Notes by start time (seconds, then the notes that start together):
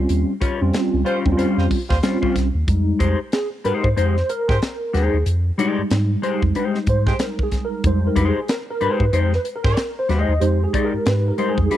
Already playing: G3 C4 C#4 F4
0.09 D#2, closed hi-hat
0.41 G3 C#4 F4 C#5, kick, closed hi-hat
0.61 F2 G3 C4 C#4 F4
0.73 snare, closed hi-hat
0.94 C#2
1.04 G3 C#4 F4 C5, closed hi-hat
1.25 D#2 G3 C4 C#4 D#4, kick
1.32 F4
1.37 G3 C#4 F4 C5, closed hi-hat
1.56 F2 G3 F4 C5, snare
1.71 kick, open hi-hat
1.89 D#2 G3 F4 C5, kick, snare
2.03 G3 C4 C#4 F4 C5, snare, closed hi-hat
2.22 G3 C#4 F4 C5, kick
2.36 C2, kick, snare, closed hi-hat
2.55 D#2
2.67 F2 G3 G#3 D#4, kick, closed hi-hat
2.99 F2 G#3 D#4 G4 C5, kick, closed hi-hat
3.32 G#4, snare, closed hi-hat
3.64 G#2 G#3 D#4 G4 A#4 C5, closed hi-hat
3.83 G#2 C5, kick
3.96 F2 G#3 D#4 G4 C5, closed hi-hat
4.17 snare
4.29 A#4, closed hi-hat
4.48 G#2 G#3 G4 C5, kick, snare
4.62 snare, closed hi-hat
4.93 D#2 G#3 D#4 G4 G#4 C5, snare, closed hi-hat
5.14 D#2
5.26 F2, closed hi-hat
5.58 G3 G#3 D#4 G4 D5, closed hi-hat
5.78 G#2
5.90 G#2, snare, closed hi-hat
6.22 G#3 D#4 G4 C5, closed hi-hat
6.42 F2, kick
6.55 G#3 D#4 G4 C5, closed hi-hat
6.75 snare
6.87 G#2 C5, kick, closed hi-hat
7.06 G#3 G4 C5, kick, snare
7.19 A#4, snare, closed hi-hat
7.39 kick
7.43 G#4
7.52 kick, snare, closed hi-hat
7.65 A#4
7.84 F2 G3 G#3 D#4 C5, kick, closed hi-hat
8.07 A#4
8.15 F2 G#3 D#4 G4 C5, kick, closed hi-hat
8.29 G#4
8.48 A#4, snare, closed hi-hat
8.71 A#4
8.81 G#2 G#3 D#4 G4 C5, closed hi-hat
8.91 B4
9.00 G#2, kick
9.13 F2 G#3 D#4 G4 C5, closed hi-hat
9.33 B4, snare
9.45 closed hi-hat
9.56 A#4
9.63 G#2 G#3 G4 C5, kick, snare
9.77 snare, closed hi-hat
9.99 C5
10.09 D#2 G#3 D#4 G4 C5, snare, closed hi-hat
10.21 D#5
10.29 D#2
10.40 F2 G#3 D#4 G4 C5, closed hi-hat
10.64 G#4
10.73 G#3 D#4 G4 D5, kick, closed hi-hat
10.85 A#4
10.93 G#2
11.06 G#2 B4, snare, closed hi-hat
11.28 A#4
11.38 G3 G#3 D#4 G4 C5, closed hi-hat
11.49 G#4
11.58 F2, kick
11.70 G#3 D#4 G4 C5, closed hi-hat